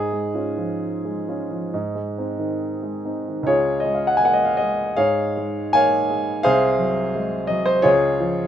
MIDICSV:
0, 0, Header, 1, 2, 480
1, 0, Start_track
1, 0, Key_signature, -5, "major"
1, 0, Tempo, 928793
1, 890, Tempo, 878477
1, 1849, Time_signature, 4, 2, 24, 8
1, 1850, Tempo, 757576
1, 3290, Tempo, 704225
1, 5144, End_track
2, 0, Start_track
2, 0, Title_t, "Grand piano"
2, 0, Program_c, 0, 0
2, 0, Note_on_c, 0, 44, 53
2, 0, Note_on_c, 0, 68, 76
2, 61, Control_c, 0, 64, 127
2, 63, Note_on_c, 0, 56, 33
2, 177, Note_on_c, 0, 61, 33
2, 179, Note_on_c, 0, 65, 35
2, 251, Note_off_c, 0, 56, 0
2, 283, Note_off_c, 0, 61, 0
2, 285, Note_off_c, 0, 65, 0
2, 298, Note_on_c, 0, 53, 38
2, 543, Note_on_c, 0, 56, 36
2, 663, Note_on_c, 0, 61, 33
2, 665, Note_on_c, 0, 65, 37
2, 681, Note_off_c, 0, 53, 0
2, 730, Note_off_c, 0, 56, 0
2, 766, Note_off_c, 0, 61, 0
2, 767, Note_off_c, 0, 65, 0
2, 782, Note_on_c, 0, 53, 39
2, 874, Note_off_c, 0, 44, 0
2, 894, Note_off_c, 0, 53, 0
2, 898, Note_on_c, 0, 44, 51
2, 900, Control_c, 0, 64, 0
2, 1011, Control_c, 0, 64, 127
2, 1015, Note_on_c, 0, 56, 36
2, 1142, Note_on_c, 0, 60, 34
2, 1144, Note_on_c, 0, 63, 38
2, 1205, Note_off_c, 0, 56, 0
2, 1245, Note_off_c, 0, 60, 0
2, 1246, Note_off_c, 0, 63, 0
2, 1253, Note_on_c, 0, 51, 38
2, 1371, Note_off_c, 0, 68, 0
2, 1493, Note_on_c, 0, 56, 31
2, 1617, Note_on_c, 0, 60, 32
2, 1618, Note_on_c, 0, 63, 35
2, 1647, Note_off_c, 0, 51, 0
2, 1692, Note_off_c, 0, 56, 0
2, 1726, Note_off_c, 0, 60, 0
2, 1727, Note_off_c, 0, 63, 0
2, 1742, Note_on_c, 0, 51, 34
2, 1822, Note_on_c, 0, 37, 55
2, 1832, Note_off_c, 0, 44, 0
2, 1843, Note_on_c, 0, 73, 85
2, 1847, Note_on_c, 0, 68, 61
2, 1848, Note_on_c, 0, 65, 65
2, 1851, Note_off_c, 0, 51, 0
2, 1861, Control_c, 0, 64, 0
2, 1963, Control_c, 0, 64, 127
2, 2049, Note_off_c, 0, 65, 0
2, 2049, Note_off_c, 0, 68, 0
2, 2054, Note_on_c, 0, 75, 68
2, 2061, Note_off_c, 0, 73, 0
2, 2080, Note_on_c, 0, 56, 43
2, 2144, Note_on_c, 0, 77, 52
2, 2161, Note_off_c, 0, 75, 0
2, 2226, Note_on_c, 0, 78, 69
2, 2229, Note_off_c, 0, 77, 0
2, 2287, Note_on_c, 0, 80, 73
2, 2290, Note_off_c, 0, 78, 0
2, 2327, Note_on_c, 0, 58, 38
2, 2339, Note_on_c, 0, 78, 68
2, 2345, Note_off_c, 0, 80, 0
2, 2392, Note_on_c, 0, 75, 68
2, 2403, Note_off_c, 0, 78, 0
2, 2456, Note_off_c, 0, 56, 0
2, 2464, Note_on_c, 0, 77, 65
2, 2470, Note_off_c, 0, 75, 0
2, 2542, Note_on_c, 0, 75, 73
2, 2548, Note_off_c, 0, 77, 0
2, 2556, Note_on_c, 0, 56, 39
2, 2558, Note_off_c, 0, 58, 0
2, 2758, Note_off_c, 0, 37, 0
2, 2792, Note_off_c, 0, 75, 0
2, 2792, Note_on_c, 0, 77, 87
2, 2794, Note_on_c, 0, 68, 68
2, 2796, Note_on_c, 0, 73, 72
2, 2801, Note_on_c, 0, 44, 49
2, 2809, Control_c, 0, 64, 0
2, 2934, Control_c, 0, 64, 127
2, 2948, Note_off_c, 0, 56, 0
2, 3050, Note_on_c, 0, 56, 42
2, 3194, Note_off_c, 0, 44, 0
2, 3261, Note_off_c, 0, 68, 0
2, 3262, Note_off_c, 0, 73, 0
2, 3276, Note_on_c, 0, 80, 92
2, 3278, Note_off_c, 0, 77, 0
2, 3287, Note_on_c, 0, 73, 70
2, 3287, Note_on_c, 0, 77, 70
2, 3288, Note_on_c, 0, 58, 40
2, 3442, Note_off_c, 0, 56, 0
2, 3530, Note_on_c, 0, 56, 41
2, 3538, Note_off_c, 0, 58, 0
2, 3744, Note_off_c, 0, 77, 0
2, 3747, Note_off_c, 0, 73, 0
2, 3755, Note_on_c, 0, 77, 103
2, 3761, Note_on_c, 0, 72, 83
2, 3763, Note_on_c, 0, 68, 87
2, 3769, Note_off_c, 0, 80, 0
2, 3771, Note_off_c, 0, 56, 0
2, 3772, Note_on_c, 0, 36, 66
2, 3785, Control_c, 0, 64, 0
2, 3874, Control_c, 0, 64, 127
2, 3998, Note_on_c, 0, 54, 45
2, 4244, Note_on_c, 0, 56, 45
2, 4386, Note_off_c, 0, 54, 0
2, 4453, Note_off_c, 0, 68, 0
2, 4453, Note_off_c, 0, 72, 0
2, 4463, Note_on_c, 0, 75, 78
2, 4477, Note_off_c, 0, 77, 0
2, 4483, Note_on_c, 0, 54, 48
2, 4486, Note_off_c, 0, 56, 0
2, 4588, Note_on_c, 0, 72, 90
2, 4595, Note_off_c, 0, 75, 0
2, 4698, Note_off_c, 0, 36, 0
2, 4702, Note_on_c, 0, 73, 95
2, 4708, Note_on_c, 0, 65, 72
2, 4708, Note_on_c, 0, 68, 74
2, 4717, Note_off_c, 0, 72, 0
2, 4719, Note_on_c, 0, 37, 70
2, 4725, Note_off_c, 0, 54, 0
2, 4739, Control_c, 0, 64, 0
2, 4835, Control_c, 0, 64, 127
2, 4961, Note_on_c, 0, 53, 53
2, 5144, Note_off_c, 0, 37, 0
2, 5144, Note_off_c, 0, 53, 0
2, 5144, Note_off_c, 0, 65, 0
2, 5144, Note_off_c, 0, 68, 0
2, 5144, Note_off_c, 0, 73, 0
2, 5144, End_track
0, 0, End_of_file